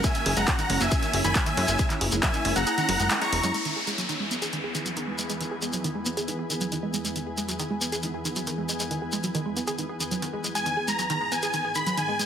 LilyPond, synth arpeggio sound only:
\new Staff \with { instrumentName = "Synth arpeggio sound" } { \clef bass \time 4/4 \key e \lydian \tempo 4 = 137 gis16 dis16 gis'16 gis16 fis16 dis16 gis16 ais16 gis'16 dis16 gis'16 dis16 fis16 dis16 gis16 gis16 | gis16 dis16 gis'16 gis16 fis16 dis16 gis16 ais16 gis'16 dis16 fis16 gis16 gis16 gis16 gis16 gis16 | gis16 dis16 gis'16 gis16 fis16 dis16 gis16 b16 gis'16 dis16 gis'16 dis16 fis16 dis16 gis16 gis16 | gis16 dis16 gis'16 gis16 fis16 dis16 gis16 b16 gis'16 dis16 gis'16 dis16 fis16 dis16 gis16 gis16 |
gis16 dis16 gis'16 gis16 fis16 dis16 gis16 b16 gis'16 dis16 gis'16 dis16 fis16 dis16 gis16 gis16 | gis16 dis16 gis'16 gis16 fis16 dis16 gis16 b16 gis'16 dis16 gis'16 dis16 fis16 dis16 gis16 gis16 | gis16 dis16 gis'16 gis16 fis16 dis16 gis16 b16 gis'16 dis16 gis'16 dis16 fis16 dis16 gis16 gis16 | }